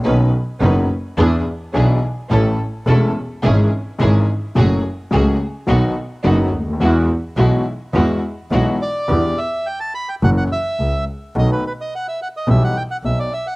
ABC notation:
X:1
M:4/4
L:1/16
Q:1/4=106
K:E
V:1 name="Bandoneon"
z16 | z16 | z16 | z12 z2 =d2- |
[K:Em] d2 e2 g a b g f f e4 z2 | ^d B B d f e f d e f g f e =d e f |]
V:2 name="String section"
[CDB]2 z2 [CDB]2 z2 [=DEG]2 z2 [DEG]2 z2 | [CEA]2 z2 [CEA]2 z2 [CEG]2 z2 [CEG]2 z2 | [A,FG]2 z2 [A,FG]2 z2 [B,DF]2 z2 [B,DF]2 z2 | [G,EF]2 z2 [G,EF]2 z2 [G,EF]2 z2 [G,EF]2 z2 |
[K:Em] z16 | z16 |]
V:3 name="Grand piano" clef=bass
[B,,,B,,D,B,CF]2 z2 [F,,,F,,D,B,CF]2 z2 [E,,E,B,=DG]2 z2 [B,,,B,,E,B,DG]2 z2 | [A,,,A,,E,A,CA]2 z2 [E,,,E,,E,A,CA]2 z2 [G,,,G,,E,G,CG]2 z2 [G,,,G,,E,G,CG]2 z2 | [F,,F,A,CG]2 z2 [C,,C,F,A,CG]2 z2 [B,,,B,,D,F,B,F]2 z2 [F,,,F,,D,F,B,F]2 z/2 C,,/2 =D,,/2 ^D,,/2 | [E,,E,G,B,F]2 z2 [B,,,B,,E,G,B,F]2 z2 [E,,E,G,B,F]2 z2 [B,,,B,,E,G,B,F]2 z2 |
[K:Em] [E,,E,B,DG]2 z6 [F,,E,F,^A,^CF]2 z2 [^C,,^C,]2 z2 | [B,,,B,,^D,A,B,F]2 z6 [B,,,B,,E,G,B,G]2 z2 [B,,,B,,]2 z2 |]
V:4 name="Double bass" clef=bass
B,,,2 z2 F,,,2 z2 E,,2 z2 B,,,2 z2 | A,,,2 z2 E,,,2 z2 G,,,2 z2 G,,,2 z2 | F,,,2 z2 C,,2 z2 B,,,2 z2 F,,,2 =D,,2 | E,,2 z2 B,,,2 z2 E,,2 z2 B,,,2 z2 |
[K:Em] E,,2 z6 F,,,2 z2 ^C,,2 z2 | B,,,2 z6 B,,,2 z2 B,,,2 z2 |]